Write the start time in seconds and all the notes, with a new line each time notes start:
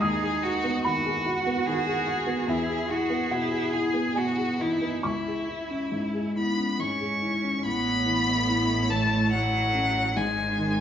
0.01 D#2 D#4 G#4 D#6
0.23 G#4
0.43 F#4
0.64 B3
0.84 D#3 F#4 B5
1.05 G#4
1.26 F#4
1.46 B3
1.66 D#3 G#4
1.87 G#4
2.07 F#4
2.27 B3
2.47 E2 E4 G#4 E5
2.69 G#4
2.90 E4 F#4 G#4
3.10 B3
3.31 B2 E4 F#5
3.51 G#4
3.72 E4 G#4
3.94 B3
4.15 B2 B3 F#4 G#5
4.37 G#4
4.59 E3 D#4 E4
4.81 B3
5.03 C#2 E4 C#6
5.27 G#4
5.48 E4
5.71 C#4
5.92 G#2
6.14 G#4
6.36 B3 E4 B5
6.57 C#4
6.80 G#2 C#4 C#6
7.00 G#4
7.22 E4
7.44 C#4
7.64 A1 A2 B3 E4 A4 C#5 B5
8.06 E3
8.48 E4
8.89 E3 A3 A5
9.31 F#3 E4 F#5
9.74 C#4
10.17 G#1 G#2 G#3 D#4 G#4 C5 G#5
10.58 D#3